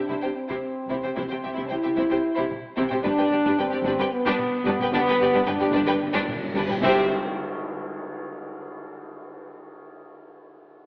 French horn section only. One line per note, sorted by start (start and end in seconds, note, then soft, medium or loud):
0.00 0.35 D4 medium
0.35 1.15 C4 medium
1.16 1.69 C4 medium
1.70 2.51 E4 medium
2.77 3.03 C4 medium
3.03 3.57 D4 loud
3.59 4.11 C4 loud
4.13 4.91 B3 loud
4.94 5.46 B3 loud
5.45 6.26 D4 loud
6.83 7.05 C4 loud